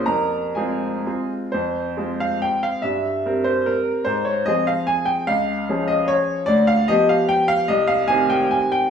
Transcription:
<<
  \new Staff \with { instrumentName = "Grand piano" } { \time 3/4 \key f \minor \tempo 4 = 145 <bes' bes''>4 <aes' aes''>4. r8 | c''4. f''8 g''8 f''8 | e''4. c''8 bes'4 | c''8 des''8 ees''8 f''8 aes''8 g''8 |
f''4. ees''8 des''4 | \key c \minor d''8 f''8 ees''8 f''8 g''8 f''8 | ees''8 f''8 aes''8 g''8 aes''8 g''8 | }
  \new Staff \with { instrumentName = "Grand piano" } { \time 3/4 \key f \minor f,4 <aes c' f'>4 <aes c' f'>4 | f,4 <aes c' f'>2 | g,4 <g c' bes'>2 | aes,4 <f c' aes'>2 |
des,4 <f des' aes'>2 | \key c \minor d,4 <f b g'>2 | c,4 <ees c' g'>2 | }
>>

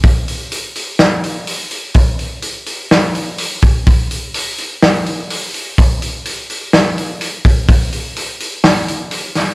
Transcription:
\new DrumStaff \with { instrumentName = "Drums" } \drummode { \time 4/4 \tempo 4 = 126 <hho bd>8 hho8 hho8 hho8 <hho sn>8 hho8 hho8 hho8 | <hho bd>8 hho8 hho8 hho8 <hho sn>8 hho8 hho8 <hho bd>8 | <hho bd>8 hho8 hho8 hho8 <hho sn>8 hho8 hho8 hho8 | <hho bd>8 hho8 hho8 hho8 <hho sn>8 hho8 hho8 <hho bd>8 |
<hho bd>8 hho8 hho8 hho8 <hho sn>8 hho8 hho8 <hho sn>8 | }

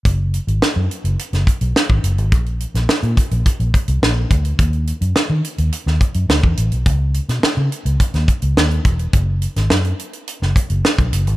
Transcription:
<<
  \new Staff \with { instrumentName = "Fingered electric bass" } { \clef bass \time 4/4 \key cis \dorian \tempo 4 = 106 fis,,8. gis,,16 r16 fis,16 r16 fis,,16 r16 fis,,16 r16 b,,16 r16 gis,,16 fis,,16 gis,,16 | ais,,8. ais,,16 r16 ais,16 r16 ais,,16 r16 ais,,16 r16 bis,,16 ais,,8 d,8 | dis,8. fis,16 r16 dis16 r16 dis,16 r16 dis,16 r16 fis,16 d,16 e,16 a,,16 b,,16 | cis,8. b,16 r16 cis16 r16 cis,16 r16 dis,16 r16 cis,16 dis,8 e,,8 |
fis,,8. gis,,16 fis,8 r8. fis,,16 r16 fis,,16 r16 b,,16 fis,,16 gis,,16 | }
  \new DrumStaff \with { instrumentName = "Drums" } \drummode { \time 4/4 <hh bd>8 hh16 hh16 sn8 hh16 hh16 hh16 <hh sn>16 <hh bd>16 hh16 sn16 bd16 hh16 hh16 | <hh bd>16 hh16 hh16 <hh sn>16 sn16 hh16 <hh bd>16 hh16 <hh bd>16 hh16 <hh bd>16 hh16 sn8 <hh bd>16 hh16 | <hh bd>16 hh16 hh16 hh16 sn8 hh16 hh16 hh16 sn16 <hh bd>16 hh16 sn16 bd16 hh16 hh16 | <hh bd>8 hh16 <hh sn>16 sn8 hh16 hh16 <hh bd>16 <hh sn>16 <hh bd>16 hh16 sn16 hh16 <hh bd>16 hh16 |
<hh bd>8 hh16 <hh sn>16 sn16 hh16 hh16 hh16 hh16 sn16 <hh bd>16 hh16 sn16 <hh bd>16 hh16 hh16 | }
>>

